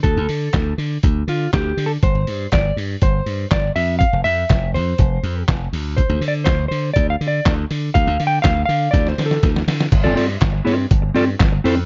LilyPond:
<<
  \new Staff \with { instrumentName = "Clean electric guitar" } { \time 4/4 \key d \minor \tempo 4 = 122 a'4. r4 f'8 \tuplet 3/2 { g'4 a'8 } | c''4 d''8 r8 c''4 d''8 e''8 | f''8 e''4 c''4. r4 | \tuplet 3/2 { c''4 d''8 } c''8 c''8 \tuplet 3/2 { d''8 f''8 d''8 } r4 |
\tuplet 3/2 { f''4 g''8 } f''8 f''8 \tuplet 3/2 { d''8 c''8 a'8 } r4 | r16 <c' f' a' d''>16 <c' f' a' d''>16 r8. <c' f' a' d''>8 r8 <c' f' a' d''>16 r8. <c' e' a' c''>16 r16 | }
  \new Staff \with { instrumentName = "Slap bass" } { \clef bass \time 4/4 \key d \minor d,16 d,16 d8 d,8 d8 d,8 d8 d,8 d8 | g,,16 g,,16 g,8 g,,8 g,8 g,,8 g,8 g,,8 f,8~ | f,16 f,,16 f,8 f,,8 f,8 f,,8 f,8 f,,8 d,8~ | d,16 d,16 d8 d,8 d8 d,8 d8 d,8 d8 |
d,16 d,16 d8 d,8 d8 d,8 d8 d,8 d8 | g,,16 g,,16 g,8 g,,8 g,8 g,,8 g,8 g,,8 f,8 | }
  \new DrumStaff \with { instrumentName = "Drums" } \drummode { \time 4/4 <hh bd>8 hho8 <hc hh bd sn>8 hho8 <hh bd>8 hho8 <hc hh bd sn>8 hho8 | <hh bd>8 hho8 <hc hh bd sn>8 hho8 <hh bd>8 hho8 <hc hh bd sn>8 hho8 | <hh bd>8 hho8 <hc hh bd sn>8 hho8 <hh bd>8 hho8 <hc hh bd sn>8 hho8 | <hh bd>8 hho8 <hc hh bd sn>8 hho8 <hh bd>8 hho8 <hc hh bd sn>8 hho8 |
<hh bd>8 hho8 <hc hh bd sn>8 hho8 <hh bd sn>16 sn16 <hho sn>16 sn16 <hh bd sn>16 sn16 <hho sn>16 sn16 | <cymc hh bd>8 hho8 <hc hh bd sn>8 hho8 <hh bd>8 hho8 <hc hh bd sn>8 hho8 | }
>>